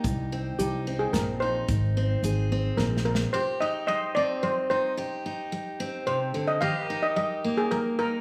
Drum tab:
HH |x--x--x--|x--x-----|---------|---------|
SD |------o--|------ooo|---------|---------|
BD |o--------|o--------|---------|---------|

HH |---------|
SD |---------|
BD |---------|